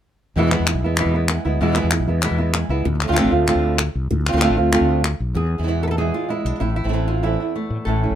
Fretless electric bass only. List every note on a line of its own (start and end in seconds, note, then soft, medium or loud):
0.36 0.55 E2 medium
0.60 0.73 E2 medium
0.74 0.81 B1 medium
0.83 1.02 E2 medium
1.06 1.37 E2 medium
1.45 1.58 D2 medium
1.61 1.80 E2 medium
1.84 1.97 E2 medium
2.00 2.06 B1 medium
2.08 2.27 E2 medium
2.31 2.63 E2 medium
2.69 2.82 C#2 medium
2.86 3.05 D2 medium
3.10 3.22 D2 medium
3.25 3.31 A1 medium
3.32 3.51 D2 medium
3.55 3.87 D2 medium
3.95 4.08 C2 medium
4.11 4.30 D2 medium
4.34 4.47 D2 medium
4.50 4.56 A1 medium
4.58 4.77 D2 medium
4.81 5.13 D2 medium
5.20 5.33 B1 medium
5.35 5.55 E2 medium
5.59 6.10 E2 medium
6.45 6.52 B1 medium
6.61 6.80 A1 medium
6.85 7.36 A1 medium
7.70 7.77 A2 medium
7.86 8.06 A1 medium
8.10 8.15 A1 medium